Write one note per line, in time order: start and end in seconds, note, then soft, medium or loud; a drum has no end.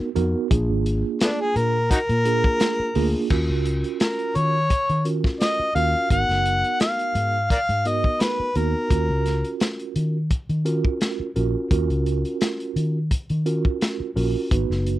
0.15 0.34 F2 medium
0.15 0.47 B3 medium
0.15 0.47 D#4 medium
0.15 0.47 F#4 medium
0.15 0.47 A#4 loud
0.15 closed hi-hat medium
0.51 0.68 A#1 medium
0.51 1.77 A#3 medium
0.51 1.76 D4 medium
0.51 1.76 F4 medium
0.51 1.77 G#4 medium
0.51 kick loud
0.51 closed hi-hat medium
0.70 1.02 G#1 medium
0.86 closed hi-hat medium
1.20 1.29 A3 medium
1.20 1.30 B3 medium
1.20 1.42 D4 medium
1.20 snare loud
1.20 closed hi-hat medium
1.40 1.58 G#4 medium
1.56 1.89 A#2 medium
1.56 1.90 A#4 medium
1.56 closed hi-hat medium
1.91 1.99 D#4 medium
1.91 1.99 F#4 medium
1.91 3.27 A#4 loud
1.91 kick medium
1.91 closed hi-hat medium
2.09 2.42 A#2 medium
2.09 closed hi-hat soft
2.25 2.88 A#3 medium
2.25 2.88 D4 medium
2.25 2.88 F4 medium
2.25 2.88 G#4 medium
2.25 closed hi-hat medium
2.44 kick medium
2.60 snare loud
2.60 closed hi-hat loud
2.80 muted fingered electric bass stroke soft
2.95 3.13 D2 medium
2.95 3.27 A#3 medium
2.95 3.27 D4 medium
2.95 3.27 F4 medium
2.95 3.27 G#4 loud
2.95 open hi-hat medium
3.30 3.48 D#2 medium
3.30 4.56 C#4 medium
3.30 4.56 F4 medium
3.30 4.57 F#4 medium
3.30 4.56 A#4 medium
3.30 kick medium
3.30 crash medium
3.50 3.82 C#2 medium
3.65 closed hi-hat medium
3.84 closed hi-hat soft
4.00 4.38 A#4 medium
4.00 snare loud
4.00 closed hi-hat medium
4.19 closed hi-hat soft
4.35 4.69 D#3 medium
4.35 5.06 C#5 loud
4.35 closed hi-hat medium
4.70 kick medium
4.70 closed hi-hat medium
4.89 5.22 D#3 medium
4.89 closed hi-hat soft
5.05 5.68 C#4 medium
5.05 5.68 F4 medium
5.05 5.68 F#4 medium
5.05 5.68 A#4 medium
5.05 closed hi-hat medium
5.24 kick medium
5.24 snare soft
5.40 5.73 D#5 loud
5.40 snare loud
5.40 closed hi-hat medium
5.60 muted fingered electric bass stroke soft
5.75 5.93 D#2 medium
5.75 6.07 C#4 medium
5.75 6.07 F4 medium
5.75 6.07 F#4 medium
5.75 6.07 A#4 medium
5.75 6.08 F5 loud
5.75 closed hi-hat medium
6.10 6.28 G#1 medium
6.10 7.37 B3 medium
6.10 7.37 D#4 medium
6.10 7.37 F#4 medium
6.10 7.37 A#4 medium
6.10 6.77 F#5 loud
6.10 kick loud
6.10 closed hi-hat medium
6.29 6.62 F#1 medium
6.29 snare soft
6.29 closed hi-hat soft
6.46 closed hi-hat medium
6.64 closed hi-hat soft
6.80 7.47 F5 medium
6.80 snare loud
6.80 closed hi-hat medium
6.99 closed hi-hat soft
7.15 7.48 G#2 medium
7.15 closed hi-hat medium
7.50 7.58 A#4 medium
7.50 7.60 D5 medium
7.50 7.89 F5 loud
7.50 kick medium
7.50 closed hi-hat medium
7.69 8.02 G#2 medium
7.69 closed hi-hat soft
7.85 8.49 B3 medium
7.85 8.49 D#4 medium
7.85 8.49 F#4 medium
7.85 8.49 A#4 medium
7.85 8.23 D#5 medium
7.85 closed hi-hat medium
8.04 kick medium
8.20 8.58 B4 medium
8.20 snare loud
8.20 closed hi-hat medium
8.40 muted fingered electric bass stroke soft
8.55 8.73 D#2 medium
8.55 8.87 B3 medium
8.55 8.87 D#4 medium
8.55 8.87 F#4 medium
8.55 8.87 A#4 medium
8.55 9.61 A#4 medium
8.55 closed hi-hat medium
8.90 9.08 D#2 medium
8.90 10.16 C#4 medium
8.90 10.16 F4 medium
8.90 10.17 F#4 medium
8.90 10.17 A#4 medium
8.90 kick medium
8.90 closed hi-hat medium
9.09 9.42 C#2 medium
9.26 snare soft
9.26 closed hi-hat medium
9.44 closed hi-hat soft
9.60 snare loud
9.60 closed hi-hat medium
9.79 closed hi-hat soft
9.96 10.29 D#3 medium
9.96 closed hi-hat medium
10.31 kick medium
10.31 closed hi-hat medium
10.49 10.82 D#3 medium
10.49 closed hi-hat soft
10.65 11.29 C#4 medium
10.65 11.29 F4 medium
10.65 11.29 F#4 medium
10.65 11.29 A#4 medium
10.65 closed hi-hat medium
10.85 kick medium
11.01 snare medium
11.01 closed hi-hat medium
11.20 muted fingered electric bass stroke soft
11.36 11.54 A#1 medium
11.36 11.67 C#4 medium
11.36 11.67 F4 medium
11.36 11.68 F#4 medium
11.36 11.67 A#4 medium
11.36 closed hi-hat medium
11.71 11.88 D#2 medium
11.71 12.97 C#4 medium
11.71 12.97 F4 medium
11.71 12.97 F#4 medium
11.71 12.97 A#4 medium
11.71 kick loud
11.71 closed hi-hat medium
11.90 12.23 C#2 medium
11.90 closed hi-hat soft
12.06 closed hi-hat soft
12.25 closed hi-hat soft
12.41 snare loud
12.41 closed hi-hat medium
12.60 closed hi-hat soft
12.76 13.09 D#3 medium
12.76 closed hi-hat medium
13.11 kick medium
13.11 closed hi-hat medium
13.30 13.63 D#3 medium
13.30 closed hi-hat soft
13.46 14.09 C#4 medium
13.46 14.09 F4 medium
13.46 14.09 F#4 medium
13.46 14.09 A#4 medium
13.46 closed hi-hat medium
13.65 kick medium
13.81 snare loud
13.81 closed hi-hat medium
14.00 muted fingered electric bass stroke soft
14.16 14.34 A#1 medium
14.16 14.47 C#4 medium
14.16 14.48 F4 medium
14.16 14.48 F#4 medium
14.16 14.48 A#4 loud
14.16 open hi-hat medium
14.51 14.69 G#1 medium
14.51 14.99 B3 medium
14.51 14.99 D#4 medium
14.51 14.99 F#4 medium
14.51 14.99 B4 medium
14.51 kick loud
14.51 closed hi-hat medium
14.70 14.99 F#1 medium
14.70 snare soft
14.86 closed hi-hat medium